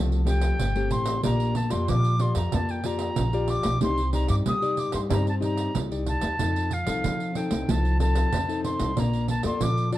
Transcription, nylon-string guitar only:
Already playing: F3 A3 C4 G4
0.25 A3 C4 G4
0.59 C3
0.76 A3 C4 G4
1.23 A#3 F4 G4 D5
1.70 F4 G4 D5
1.88 F3
2.20 F4 G4 D5
2.53 A#3
2.85 F4 G4 D5
3.17 F3
3.33 F4 G4 D5
3.81 C4 D#4 G4 D5
4.12 D#4 G4 D5
4.45 G3
4.62 D#4 G4 D5
5.09 C4 D#4 G4 D5
5.41 D#4 G4 D5
5.75 G3
5.91 D#4 G4 D5
6.39 F3 C4 D#4 A4
6.86 C4 D#4 A4
7.04 C3
7.35 C4 D#4 A4
7.68 F3
7.99 C4 D#4 A4
8.32 C3
8.48 C4 D#4 A4
8.96 A#3 F4 D5
9.43 F4 A4 D5
9.60 F3
9.92 F4 D5

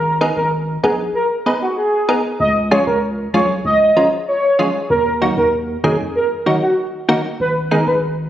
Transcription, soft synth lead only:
Already playing: A#4
0.36 A#4
0.83 G#4
1.15 A#4
1.62 F#4
1.77 G#4
2.40 D#5
2.72 C#5
2.87 A#4
3.34 C#5
3.65 D#5
4.28 C#5
4.90 A#4
5.37 A#4
5.84 G#4
6.16 A#4
6.62 F#4
7.41 B4
7.72 A#4
7.88 B4

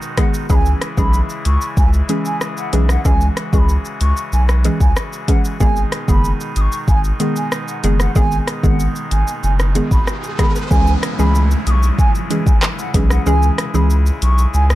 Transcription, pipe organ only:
Already playing: B2 D#3 G#3 D#4 F#4
0.50 C#3 E3 E4 G#4
3.05 F#4
5.60 B2 D#3 G#3 D#4
10.71 C#3 G#3 E4 G#4

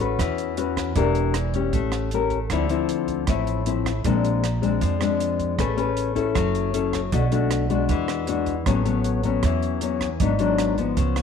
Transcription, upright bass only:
Already playing: A1
0.19 E2
0.96 E1
1.73 A1
2.51 D2
3.28 A1
4.05 A#1
4.82 F2
5.59 A1
6.35 F#1
7.13 B1
7.89 E2
8.66 A1
9.43 E2
10.20 G#1
10.97 C#2

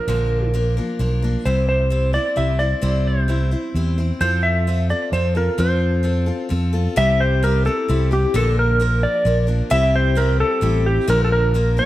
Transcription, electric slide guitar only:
Already playing: A#4
1.46 C5
1.69 C5
2.14 D5
2.37 E5
2.59 D5
3.07 C5
4.21 C5
4.43 E5
4.90 D5
5.13 C5
5.37 A#4
5.60 C5
6.97 E5
7.20 C5
7.44 A#4
7.66 A4
8.13 G4
8.36 A4
8.59 A#4
9.03 D5
9.71 E5
9.96 C5
10.17 A#4
10.40 A4
10.86 G4
11.10 A#4
11.25 A4
11.32 A#4
11.79 D5

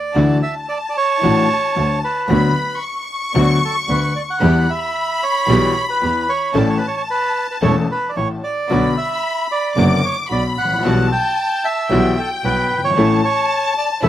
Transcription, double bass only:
0.15 D2
1.22 A1
1.76 D2
2.28 D2
3.35 D2
3.88 D2
4.41 E2
5.47 B1
6.01 E2
6.54 A1
7.62 E1
8.16 A1
8.70 B1
9.77 F#1
10.30 B1
10.58 A1
10.84 B1
11.90 B1
12.44 B1
12.70 G1
12.96 A1
14.03 E1

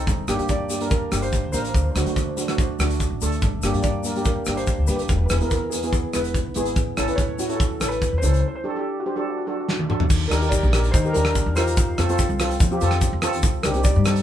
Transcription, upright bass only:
0.07 G1
0.28 G1
0.39 G2
1.12 G1
1.44 D2
1.53 A1
1.74 D2
1.95 D2
2.05 D3
2.79 D2
3.10 A1
3.22 D2
3.42 G1
3.63 G1
3.73 G2
4.47 G1
4.78 D2
4.89 G1
5.09 E1
5.30 E1
5.41 E2
6.14 E1
6.46 B1
6.56 G#1
6.76 A1
6.98 A1
7.08 A2
7.81 A1
8.13 E2
8.23 C#2
10.10 D#2
10.32 D#2
10.63 A#1
10.94 D#3
11.15 D#2
11.46 E2
11.77 F2
11.98 F2
12.29 C2
12.60 F3
12.81 F2
13.13 F2
13.43 C2
13.65 C2
13.96 G2

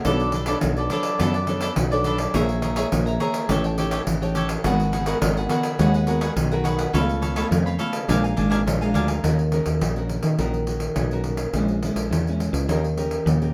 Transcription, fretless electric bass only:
0.05 B1
0.63 B1
1.20 F#2
1.77 B1
2.34 A#1
2.92 A#1
3.49 A1
4.07 A1
4.64 G#1
5.22 G#1
5.79 D#2
6.36 B1
6.94 C#2
7.51 F2
8.09 A#1
8.38 G#1
8.67 A#1
8.95 D2
9.24 D#2
9.66 D#2
9.82 A#1
10.23 D#3
10.38 A#1
10.96 B1
11.53 A#1
11.96 A#1
12.11 E2
12.53 C#2
12.68 D#2
13.26 D#2

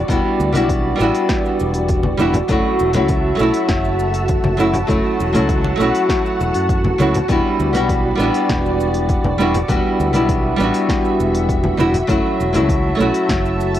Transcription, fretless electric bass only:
0.09 E1
0.40 D2
0.56 B1
1.00 A1
1.61 E1
2.21 E1
2.50 F#1
2.81 E1
2.95 C#2
3.40 B1
3.69 F#1
4.45 F#1
4.89 F#1
5.20 E1
5.35 C#2
5.80 B1
6.41 E1
6.55 F#2
7.00 C#2
7.29 E1
7.60 D2
7.74 B1
8.19 A1
8.50 E1
9.25 E1
9.69 E1
10.00 D2
10.15 B1
10.59 A1
11.20 E1
11.80 E1
12.09 F#1
12.40 E1
12.55 C#2
13.00 B1
13.29 F#1

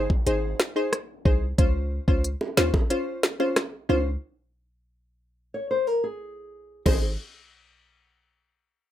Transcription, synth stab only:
Already playing: D#4 G#4 C5
0.26 D#4 G#4 C5
0.76 D#4 G#4 C5
1.25 D#4 G#4 C5
1.58 C#4 F4 C5
2.08 C#4 F4 C5
2.57 C#4 F4 C5
2.90 C#4 F4 C5
3.40 C#4 F4 C5
3.89 C#4 F4 C5
6.86 D#4 G#4 C5

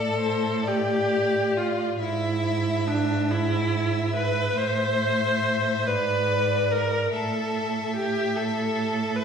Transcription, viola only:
Already playing: A4
0.68 G4
1.56 F4
2.01 E4
2.88 D4
3.30 E4
4.15 B4
4.57 C5
5.86 B4
6.71 A#4
7.13 A4
7.96 G4
8.36 A4
9.16 B4

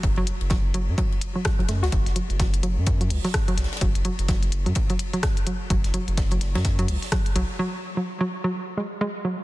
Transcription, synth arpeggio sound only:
0.17 F#3
0.51 F#3
0.74 F#3
0.98 F#3
1.35 F#3
1.45 F#3
1.59 F#3
1.69 A3
1.83 F#4
2.16 F#3
2.40 F#3
2.63 F#3
3.01 F#3
3.25 F#3
3.48 F#3
3.81 F#3
4.05 F#3
4.29 F#3
4.66 F#3
4.90 F#3
5.13 F#3
5.47 F#3
5.70 F#3
5.94 F#3
6.32 F#3
6.55 F#3
6.79 F#3
7.12 F#3
7.36 F#3
7.59 F#3
7.97 F#3
8.21 F#3
8.44 F#3
8.77 G#3
9.01 G#3
9.25 F#3

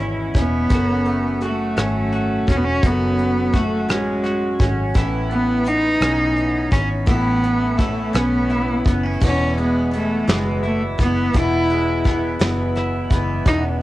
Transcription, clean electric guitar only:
Already playing: E2 G#3 C#4
0.00 E4
0.35 C#4
0.71 F#2 F#4
1.06 A3
1.43 F#4
1.77 C#4
2.13 F#4
2.48 C#4
2.83 F#2 F#4
3.54 F#4
3.89 C#4
4.23 F#4
4.60 C#4
4.96 E4
5.30 B3
6.01 C#4
6.73 C#4
7.08 A2 E4
7.43 B3
7.78 E4
8.14 C#4
8.50 E4
8.86 B3
9.03 C#4
9.21 E2
9.57 G#3
9.92 B3
10.27 E3
10.63 E4
11.00 B3
11.35 E2
11.71 G#3
12.06 B3
12.41 E3
12.76 E4
13.12 B3
13.48 E2

